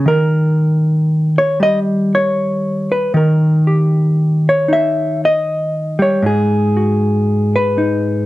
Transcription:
Already playing: F#4
0.06 D#3 A#4
1.38 C#5
1.60 G3 D#5
2.15 C#5
2.92 B4
3.14 D#3 A#4
3.67 G4
4.49 C#5
4.68 D#4
4.73 E5
5.25 D#5
5.99 G3 C#5
6.22 G#2 G#4
6.77 F#4
7.56 B4
7.78 D#4

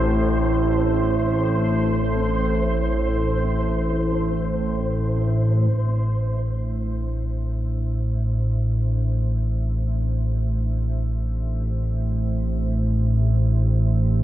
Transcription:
Already playing: A1 A2 A3 D4 A4 C5 E5
5.74 A1 A2
7.41 G4

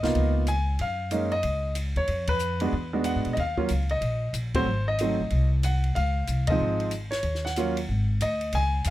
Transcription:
Already playing: D#5
0.03 C2 A#3 B3 D#4 F4, snare, ride
0.15 C#2, ride
0.47 G#5, hi-hat pedal, ride
0.79 F#2 F5, ride
1.11 G#3 A#3 C#4 D#4, hi-hat pedal, ride
1.32 D#5, ride
1.43 C#2, ride
1.75 hi-hat pedal, ride
1.96 D#2 C#5, ride
2.07 F2, ride
2.27 B4, kick, ride
2.39 hi-hat pedal
2.60 G#3 B3 D4 F#4, ride
2.72 E2
2.93 G#3 B3 D4 F#4
3.04 F#5, hi-hat pedal, ride
3.16 G#2
3.25 A#2, ride
3.33 D#2 D#5, ride
3.40 F5
3.57 F#3 A#3 C#4 F4, kick
3.68 C#2, hi-hat pedal, ride
3.89 D#5, ride
4.01 A#1, ride
4.33 A#1, hi-hat pedal, ride
4.54 F#3 A3 C4 F#4 C5, kick, ride
4.65 G#1
4.88 D#5
4.99 F#3 A3 C4 D#4, hi-hat pedal, ride
5.20 A1
5.30 C2, ride
5.63 F#5, hi-hat pedal, ride
5.84 ride
5.95 C#2 F5, ride
6.27 C2, hi-hat pedal, ride
6.47 F3 G#3 C4 D#4 D#5, kick, ride
6.60 G#1
6.80 ride
6.91 hi-hat pedal, ride
7.11 C#5, snare, ride
7.23 D#2, ride
7.35 snare
7.45 F#5, snare
7.56 F#3 A#3 C#4 F4, hi-hat pedal, ride
7.77 ride
7.89 G#1
8.21 D2 D#5, hi-hat pedal, ride
8.41 ride
8.52 C#2 G#5, ride
8.84 D#2, hi-hat pedal, ride

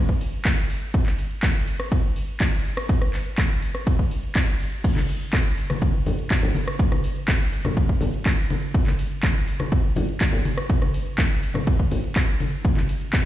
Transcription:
0.09 kick, closed hi-hat
0.21 open hi-hat
0.33 closed hi-hat
0.45 kick, clap, closed hi-hat, ride
0.58 closed hi-hat
0.70 open hi-hat
0.82 closed hi-hat
0.94 kick, closed hi-hat, ride
1.06 clap, closed hi-hat
1.18 open hi-hat
1.31 closed hi-hat
1.43 kick, clap, closed hi-hat, ride
1.67 open hi-hat
1.80 cross-stick, closed hi-hat
1.92 kick, closed hi-hat, ride
2.04 closed hi-hat
2.16 open hi-hat
2.28 closed hi-hat
2.40 kick, clap, closed hi-hat, ride
2.53 closed hi-hat
2.65 open hi-hat
2.77 cross-stick, closed hi-hat
2.89 kick, closed hi-hat, ride
3.02 cross-stick, closed hi-hat
3.14 clap, open hi-hat
3.26 closed hi-hat
3.38 kick, clap, closed hi-hat, ride
3.50 closed hi-hat
3.62 open hi-hat
3.75 cross-stick, closed hi-hat
3.87 kick, closed hi-hat, ride
3.99 kick, closed hi-hat
4.11 open hi-hat
4.23 closed hi-hat
4.35 kick, clap, closed hi-hat, ride
4.48 closed hi-hat
4.60 open hi-hat
4.72 closed hi-hat
4.84 kick, closed hi-hat, crash, ride
4.96 clap, closed hi-hat, high conga
5.09 open hi-hat
5.21 closed hi-hat
5.33 kick, clap, closed hi-hat, ride, high conga
5.58 open hi-hat
5.70 cross-stick, closed hi-hat, high conga
5.82 kick, closed hi-hat, ride
5.94 closed hi-hat
6.06 open hi-hat, high conga, low conga
6.19 closed hi-hat
6.31 kick, clap, closed hi-hat, ride
6.43 closed hi-hat, low conga
6.55 open hi-hat, high conga
6.68 cross-stick, closed hi-hat
6.79 kick, closed hi-hat, ride
6.92 cross-stick, closed hi-hat, high conga
7.04 open hi-hat
7.16 closed hi-hat
7.28 kick, clap, closed hi-hat, ride, high conga
7.53 open hi-hat
7.65 cross-stick, closed hi-hat, high conga, low conga
7.77 kick, closed hi-hat, ride
7.89 kick, closed hi-hat
8.01 open hi-hat, high conga, low conga
8.14 closed hi-hat
8.26 kick, clap, closed hi-hat, ride
8.38 closed hi-hat
8.50 open hi-hat, high conga
8.62 closed hi-hat
8.74 kick, closed hi-hat, ride
8.87 clap, closed hi-hat, high conga
8.99 open hi-hat
9.11 closed hi-hat
9.23 kick, clap, closed hi-hat, ride, high conga
9.48 open hi-hat
9.60 cross-stick, closed hi-hat, high conga
9.72 kick, closed hi-hat, ride
9.84 closed hi-hat
9.96 open hi-hat, high conga, low conga
10.09 closed hi-hat
10.21 kick, clap, closed hi-hat, ride
10.32 closed hi-hat, low conga
10.45 open hi-hat, high conga
10.58 cross-stick, closed hi-hat
10.70 kick, closed hi-hat, ride
10.82 cross-stick, closed hi-hat, high conga
10.94 open hi-hat
11.06 closed hi-hat
11.18 kick, clap, closed hi-hat, ride, high conga
11.43 open hi-hat
11.54 cross-stick, closed hi-hat, high conga, low conga
11.67 kick, closed hi-hat, ride
11.79 kick, closed hi-hat
11.91 open hi-hat, high conga, low conga
12.04 closed hi-hat
12.16 kick, clap, closed hi-hat, ride
12.28 closed hi-hat
12.40 open hi-hat, high conga
12.53 closed hi-hat
12.65 kick, closed hi-hat, ride
12.77 clap, closed hi-hat, high conga
12.89 open hi-hat
13.01 closed hi-hat
13.13 kick, clap, closed hi-hat, ride, high conga

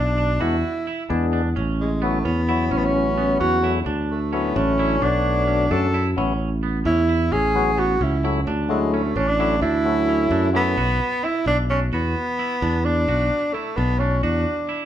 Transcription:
Already playing: B1 D4
0.18 D4
0.40 E2 G#3 B3 D4 E4 F#4
0.87 E4
1.09 E2 G#3 B3 D4 G#4
1.33 D4
1.56 A1 C#4
1.80 G#3
2.02 F#3 A3 B3 C#4 E4
2.25 E2 B3 C#4
2.49 F#3 B3 C#4 E4
2.71 A1 C#4
2.77 B3
2.85 C#4
2.94 F#3 B3 C#4 E4
3.18 B3
3.40 E2 C#4 F#4
3.62 F#3 A3 C#4 E4
3.86 D2 D4
4.11 A3
4.33 F#3 A3 B3 C#4 E4
4.56 A1 C#4 D4
4.79 F#3 A3 D4 E4 C#5
5.02 B1 F#3 A3 B3 D4
5.47 C#4
5.71 F#2 F#3 A3 C#4 D4 A4
5.94 E4
6.17 A1 F#3 B3 C#4 E4
6.63 B3
6.85 E2 C#4 E4
7.09 E4
7.32 A1 C#4 G#4
7.55 F#3 B3 C#4 F#4
7.78 B3 F#4
8.01 C#2 C#4 E4
8.24 F#3 A3 C#4 E4
8.47 D2 D4
8.69 F#3 G#3 A3 C#4 E4
8.93 A3 C#4
9.16 A1 C#4 D4
9.28 D4
9.39 F#3 A3 C#4 E4
9.61 D2 D4 E4
9.85 F#3 A3 C#4 E4
10.09 C#4
10.31 F#2 D4
10.53 F#3 A3 B3 C#4 E4
10.77 B1 F#4
11.24 E4
11.46 B1 D4
11.70 C#4 D4
11.93 E2 B3 F#4
12.39 E4
12.62 E2 D4
12.85 D4
13.08 B1 F#4
13.53 A3 E4
13.77 B1 B3 D4
13.99 C#4 D4
14.23 E2 D4 F#4
14.69 E4

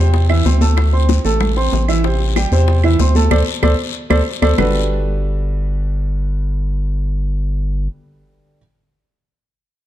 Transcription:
Already playing: E2 C3 C4 C5
0.14 high bongo, high conga, long guiro
0.29 E3 E4 E5, high bongo, high conga, claves
0.45 D2 C4 C5 C6, high bongo, low bongo, high conga, short guiro
0.61 A3 A4 A5, high bongo, high conga, short guiro
0.77 high bongo, high conga, long guiro, claves
0.93 C4 C5 C6, high bongo, high conga
1.09 high bongo, high conga, short guiro
1.24 A1 A3 A4 A5, short guiro
1.40 high bongo, high conga, low conga, long guiro, claves
1.56 C4 C5 C6, high bongo, high conga
1.72 A1, high bongo, low bongo, high conga, short guiro
1.88 E3 E4 E5, high bongo, high conga, short guiro, claves
2.04 C3 C4 C5, high bongo, high conga, long guiro
2.20 high bongo, high conga
2.36 G3 G4 G5, high bongo, high conga, short guiro, claves
2.52 E2 C3 C4 C5, high conga, short guiro
2.67 high bongo, high conga, long guiro
2.83 E3 E4 E5, high bongo, high conga, claves
2.99 D2 C4 C5 C6, high bongo, low bongo, high conga, short guiro
3.15 A3 A4 A5, high bongo, high conga, short guiro
3.31 D2 A4 C5 D5, low bongo, high conga, long guiro, claves
3.62 D2 A4 C5 D5, low bongo, high conga, long guiro, claves
4.10 D2 A4 C5 D5, low bongo, high conga, long guiro, claves
4.42 D2 A4 C5 D5, low bongo, high conga, long guiro, claves
4.58 G1 G3 D4 F#4 G4 A4 B4, low bongo, low conga, long guiro, claves

